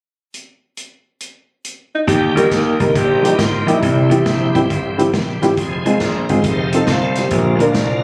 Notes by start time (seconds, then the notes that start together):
0.34 closed hi-hat
0.77 closed hi-hat
1.20 closed hi-hat
1.64 closed hi-hat
1.95 D#4
2.07 D#2 D#3 G3 A#3 G4, kick, closed hi-hat
2.35 D2 G3 A#3 D#4 G4 A#4, closed hi-hat
2.51 D#2, kick, snare, closed hi-hat
2.80 C2 G3 A#3 D#4 A#4, kick, closed hi-hat
2.95 A#1 G4, kick, closed hi-hat
3.23 G3 A#3 D#4 G4, closed hi-hat
3.35 G#1 E4 F4, kick, snare, closed hi-hat
3.66 A#1 G3 A#3 D#4 E4 G4, closed hi-hat
3.81 C2 C3 E3 G3 C4 G4, kick, closed hi-hat
4.09 E2 G3 C4 E4 G4, closed hi-hat
4.25 A#1, kick, snare, closed hi-hat
4.54 G#1 G3 C4 E4 G4, kick, closed hi-hat
4.70 G1, kick, closed hi-hat
4.98 G3 C4 E4 G4, closed hi-hat
5.13 A#1, kick, snare, closed hi-hat
5.41 G#1 G3 C4 E4 G4, snare, closed hi-hat
5.56 F1 F3 G#3 C4 G4, kick, closed hi-hat
5.62 G#4
5.85 C2 G#3 C4 F4 G#4, closed hi-hat
6.00 A#1 D4 A#4, kick, snare, closed hi-hat
6.28 G#1 G#3 C4 D#4 F4 G#4 C5, kick, closed hi-hat
6.43 F1 D#3 A3 C4 F4, kick, closed hi-hat
6.72 C4 D#4 F4 A4, closed hi-hat
6.87 C2, kick, snare, closed hi-hat
6.91 C5
7.15 G4 C5, snare, closed hi-hat
7.30 A#1 A#2 D3 F3 A#3 F4, kick, closed hi-hat
7.58 D2 A#3 D4 F4 A#4, closed hi-hat
7.74 C2, kick, snare, closed hi-hat